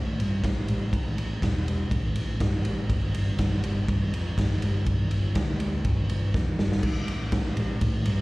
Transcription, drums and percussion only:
0.20 ride medium
0.44 kick loud
0.44 snare loud
0.44 ride loud
0.68 ride medium
0.93 kick loud
0.93 ride loud
1.18 ride medium
1.42 kick loud
1.42 snare loud
1.42 ride loud
1.68 ride medium
1.91 kick loud
1.91 ride loud
2.16 ride medium
2.40 kick loud
2.40 snare loud
2.40 ride loud
2.65 ride medium
2.90 kick loud
2.90 ride loud
3.14 ride medium
3.39 kick loud
3.39 snare loud
3.39 ride loud
3.64 ride medium
3.88 kick loud
3.88 ride loud
4.14 ride medium
4.38 kick loud
4.38 snare loud
4.38 ride loud
4.62 ride medium
4.86 kick loud
4.86 ride loud
5.11 ride medium
5.35 kick loud
5.35 snare loud
5.35 ride medium
5.60 ride medium
5.85 kick loud
5.85 ride loud
6.09 ride medium
6.34 kick loud
6.34 snare medium
6.59 snare loud
6.72 snare medium
6.83 kick loud
6.83 crash loud
7.08 ride medium
7.32 kick loud
7.32 snare loud
7.32 ride loud
7.57 ride medium
7.81 kick loud
7.81 ride loud
8.06 ride medium

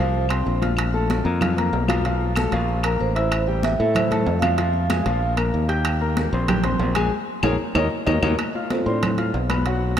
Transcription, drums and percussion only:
0.14 high conga soft
0.29 high conga soft
0.29 high timbale medium
0.29 claves medium
0.46 high conga soft
0.62 high conga medium
0.62 high timbale medium
0.77 high conga soft
0.77 high timbale loud
0.77 claves medium
0.94 high conga soft
1.10 high conga medium
1.10 high timbale medium
1.26 high conga soft
1.41 high conga soft
1.41 low conga medium
1.41 high timbale medium
1.41 claves medium
1.57 high conga soft
1.57 high timbale medium
1.72 high conga soft
1.72 low timbale medium
1.88 high conga medium
1.88 high timbale medium
1.88 claves medium
2.05 high conga soft
2.05 high timbale medium
2.21 high conga soft
2.36 high conga medium
2.36 high timbale medium
2.36 claves medium
2.52 high conga soft
2.52 high timbale medium
2.69 high conga soft
2.83 high conga soft
2.83 high timbale medium
2.83 claves medium
3.00 high conga soft
3.16 high timbale medium
3.32 high conga soft
3.32 high timbale loud
3.32 claves medium
3.48 high conga soft
3.63 high conga medium
3.63 high timbale medium
3.80 high conga soft
3.95 high conga soft
3.95 low conga medium
3.95 high timbale medium
3.95 claves medium
4.11 high conga soft
4.11 low conga medium
4.11 high timbale medium
4.26 high conga soft
4.26 low timbale medium
4.42 high conga medium
4.42 high timbale loud
4.42 claves medium
4.58 high conga soft
4.58 high timbale medium
4.73 high conga soft
4.90 high conga medium
4.90 high timbale medium
4.90 claves medium
5.06 high conga soft
5.06 high timbale medium
5.22 high conga soft
5.37 high conga soft
5.37 high timbale medium
5.37 claves medium
5.54 high conga soft
5.69 high timbale medium
5.85 high conga soft
5.85 high timbale loud
5.85 claves medium
6.02 high conga soft
6.17 high conga medium
6.17 high timbale medium
6.33 high conga soft
6.48 high conga soft
6.48 low conga medium
6.48 high timbale loud
6.48 claves medium
6.64 high conga soft
6.64 low conga medium
6.64 high timbale medium
6.80 high conga soft
6.80 low timbale medium
6.95 high conga medium
6.95 high timbale loud
6.95 claves medium
7.43 high conga medium
7.43 high timbale loud
7.43 claves loud
7.75 high conga medium
7.75 high timbale loud
7.75 claves loud
8.07 high conga loud
8.07 high timbale medium
8.07 claves loud
8.23 high conga loud
8.23 high timbale medium
8.23 claves loud
8.39 high conga soft
8.39 high timbale medium
8.39 claves medium
8.55 high conga soft
8.70 high conga medium
8.70 high timbale medium
8.87 high conga soft
9.03 high conga soft
9.03 low conga medium
9.03 high timbale medium
9.03 claves medium
9.18 high conga soft
9.18 high timbale medium
9.34 high conga soft
9.34 low timbale medium
9.50 high conga medium
9.50 high timbale medium
9.50 claves medium
9.66 high conga soft
9.66 high timbale medium
9.83 high conga soft
9.97 high timbale loud

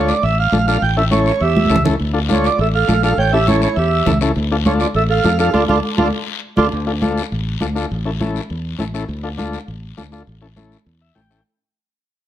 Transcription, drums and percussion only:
0.08 short guiro medium
0.23 high conga soft
0.23 long guiro medium
0.52 high conga medium
0.52 short guiro medium
0.68 short guiro medium
0.82 high conga soft
0.82 long guiro medium
1.11 high conga medium
1.11 short guiro medium
1.26 short guiro medium
1.40 high conga soft
1.40 long guiro medium
1.57 high conga loud
1.66 high conga medium
1.66 short guiro medium
1.76 low conga loud
1.85 low conga medium
1.85 short guiro medium
2.00 high conga soft
2.00 long guiro medium
2.29 high conga medium
2.29 short guiro medium
2.44 short guiro medium
2.59 high conga soft
2.59 long guiro medium
2.89 high conga medium
2.89 short guiro medium
3.03 short guiro medium
3.18 high conga soft
3.18 long guiro medium
3.47 high conga medium
3.47 short guiro medium
3.62 short guiro medium
3.76 high conga soft
3.76 long guiro medium
4.06 high conga medium
4.06 low conga medium
4.06 short guiro medium
4.21 short guiro medium
4.35 high conga soft
4.35 long guiro medium
4.65 high conga medium
4.65 short guiro medium
4.80 short guiro medium
4.94 high conga soft
4.94 long guiro medium
5.24 high conga medium
5.24 short guiro medium
5.39 short guiro medium
5.54 high conga medium
5.54 long guiro loud
5.68 high conga loud
5.68 long guiro loud
5.98 high conga loud
5.98 long guiro medium
6.57 high conga loud
6.57 long guiro loud
6.72 high conga soft
6.72 long guiro medium
7.02 high conga medium
7.02 short guiro medium
7.18 short guiro medium
7.32 high conga soft
7.32 long guiro medium
7.61 high conga medium
7.61 short guiro medium
7.76 short guiro medium
7.91 high conga soft
7.91 long guiro medium
8.21 high conga medium
8.21 short guiro medium
8.36 short guiro medium
8.50 high conga soft
8.50 long guiro medium
8.79 high conga medium
8.79 short guiro medium
8.95 short guiro medium
9.09 high conga soft
9.09 long guiro medium
9.38 high conga medium
9.38 short guiro medium
9.53 short guiro medium
9.68 high conga soft
9.68 long guiro medium
9.98 high conga medium
9.98 short guiro medium
10.12 short guiro medium
10.27 high conga soft
10.27 long guiro medium
10.57 high conga medium
10.57 short guiro medium
10.72 short guiro medium
10.87 long guiro medium
11.16 high conga medium
11.16 short guiro medium
11.31 short guiro medium

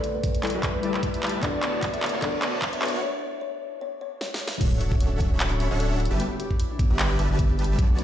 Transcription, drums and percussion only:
0.04 closed hi-hat medium
0.24 kick medium
0.24 closed hi-hat medium
0.35 closed hi-hat medium
0.43 clap medium
0.43 closed hi-hat soft
0.47 closed hi-hat medium
0.50 closed hi-hat medium
0.63 kick medium
0.63 clap medium
0.63 closed hi-hat medium
0.83 closed hi-hat medium
0.94 clap medium
1.03 kick medium
1.03 closed hi-hat medium
1.14 closed hi-hat medium
1.23 clap medium
1.23 closed hi-hat soft
1.27 closed hi-hat medium
1.29 closed hi-hat medium
1.43 kick loud
1.43 clap medium
1.43 closed hi-hat medium
1.63 clap medium
1.63 closed hi-hat medium
1.82 kick medium
1.82 clap medium
1.82 closed hi-hat medium
1.94 closed hi-hat medium
2.03 clap medium
2.03 closed hi-hat soft
2.06 closed hi-hat medium
2.09 closed hi-hat medium
2.22 kick medium
2.22 clap medium
2.22 closed hi-hat medium
2.42 clap medium
2.42 closed hi-hat medium
2.62 kick medium
2.62 clap medium
2.62 closed hi-hat medium
2.73 closed hi-hat medium
2.82 clap medium
2.82 closed hi-hat soft
2.86 closed hi-hat medium
2.88 closed hi-hat medium
4.21 snare medium
4.34 snare medium
4.48 snare loud
4.61 kick loud
4.61 closed hi-hat medium
4.61 crash loud
4.81 closed hi-hat medium
4.92 kick loud
5.01 closed hi-hat medium
5.20 kick loud
5.20 closed hi-hat medium
5.40 clap loud
5.40 closed hi-hat medium
5.60 closed hi-hat medium
5.80 closed hi-hat medium
6.00 closed hi-hat soft
6.05 closed hi-hat medium
6.20 closed hi-hat medium
6.40 closed hi-hat medium
6.51 kick medium
6.60 closed hi-hat medium
6.79 kick loud
6.79 closed hi-hat medium
6.99 clap loud
6.99 closed hi-hat medium
7.19 closed hi-hat medium
7.39 kick loud
7.39 closed hi-hat medium
7.59 closed hi-hat soft
7.64 closed hi-hat medium
7.79 kick loud
7.79 closed hi-hat medium
7.99 closed hi-hat medium

